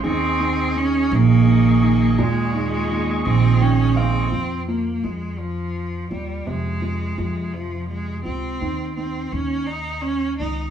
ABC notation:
X:1
M:6/8
L:1/8
Q:3/8=56
K:Fm
V:1 name="Tonewheel organ"
[Aed']6- | [Aed']6 | z6 | z6 |
z6 |]
V:2 name="Cello"
C2 D B,3 | A,3 C D C- | C B, A, F,2 G, | A,3 F, A, C- |
C C D E D E |]
V:3 name="Upright piano" clef=bass
E, E, E, E, E, E, | B,, E, E, E, [E,g] [E,f] | F, F, F,3 F, | C, F, F,3 F, |
E, E, E,3 E, |]
V:4 name="Upright bass" clef=bass
E,,3 B,,,3 | E,,3 B,,,3 | F,,2 F,,3 E,, | F,,2 F,,3 D,, |
E,,2 E,,3 D,, |]